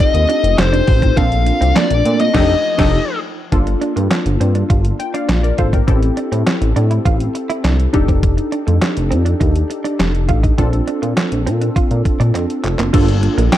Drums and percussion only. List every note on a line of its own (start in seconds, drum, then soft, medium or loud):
0.00 kick loud
0.00 closed hi-hat loud
0.15 closed hi-hat medium
0.30 closed hi-hat medium
0.44 closed hi-hat medium
0.59 snare loud
0.59 clap medium
0.59 closed hi-hat medium
0.74 closed hi-hat soft
0.87 kick loud
0.87 open hi-hat medium
1.02 kick medium
1.02 closed hi-hat medium
1.17 kick loud
1.17 closed hi-hat medium
1.32 closed hi-hat medium
1.46 closed hi-hat medium
1.62 closed hi-hat medium
1.76 snare loud
1.76 clap loud
1.76 closed hi-hat medium
1.91 closed hi-hat medium
2.05 closed hi-hat medium
2.20 closed hi-hat medium
2.35 kick loud
2.35 snare loud
2.35 crash medium
2.79 kick loud
2.79 snare loud
2.79 crash medium
3.52 kick loud
3.52 closed hi-hat medium
3.67 closed hi-hat soft
3.82 closed hi-hat medium
3.97 closed hi-hat medium
4.11 snare loud
4.11 clap medium
4.11 closed hi-hat medium
4.26 closed hi-hat medium
4.41 closed hi-hat medium
4.55 closed hi-hat soft
4.70 kick loud
4.70 closed hi-hat medium
4.85 closed hi-hat medium
5.00 closed hi-hat medium
5.14 closed hi-hat medium
5.29 snare loud
5.29 clap medium
5.29 closed hi-hat medium
5.44 closed hi-hat soft
5.58 kick medium
5.58 closed hi-hat medium
5.73 kick medium
5.73 closed hi-hat medium
5.88 kick loud
5.88 closed hi-hat medium
6.03 closed hi-hat soft
6.17 closed hi-hat medium
6.33 closed hi-hat medium
6.47 snare loud
6.47 clap medium
6.47 closed hi-hat medium
6.62 closed hi-hat medium
6.76 closed hi-hat medium
6.91 closed hi-hat soft
7.06 kick loud
7.06 closed hi-hat medium
7.20 closed hi-hat medium
7.35 closed hi-hat medium
7.50 closed hi-hat soft
7.64 snare medium
7.64 clap medium
7.64 closed hi-hat medium
7.80 closed hi-hat soft
7.94 kick medium
7.94 closed hi-hat medium
8.08 kick medium
8.08 closed hi-hat soft
8.23 kick loud
8.23 closed hi-hat medium
8.38 closed hi-hat soft
8.52 closed hi-hat medium
8.68 closed hi-hat soft
8.82 snare loud
8.82 clap loud
8.82 closed hi-hat medium
8.97 closed hi-hat medium
9.12 closed hi-hat medium
9.26 closed hi-hat soft
9.41 kick loud
9.41 closed hi-hat medium
9.56 closed hi-hat medium
9.71 closed hi-hat medium
9.85 closed hi-hat medium
10.00 snare loud
10.00 clap medium
10.00 closed hi-hat medium
10.15 closed hi-hat soft
10.29 kick medium
10.29 closed hi-hat medium
10.44 kick medium
10.44 closed hi-hat medium
10.58 kick loud
10.58 closed hi-hat medium
10.73 closed hi-hat soft
10.88 closed hi-hat medium
11.03 closed hi-hat medium
11.17 snare loud
11.17 clap medium
11.17 closed hi-hat medium
11.32 closed hi-hat medium
11.47 closed hi-hat medium
11.61 closed hi-hat soft
11.76 kick loud
11.76 closed hi-hat medium
11.91 closed hi-hat soft
12.05 kick medium
12.05 closed hi-hat medium
12.21 closed hi-hat soft
12.35 clap soft
12.35 closed hi-hat medium
12.50 closed hi-hat soft
12.64 clap medium
12.64 closed hi-hat medium
12.79 clap medium
12.79 closed hi-hat soft
12.94 kick loud
12.94 closed hi-hat loud
12.94 crash loud
13.08 closed hi-hat medium
13.23 closed hi-hat medium
13.38 closed hi-hat medium
13.53 snare loud
13.53 clap loud
13.53 closed hi-hat medium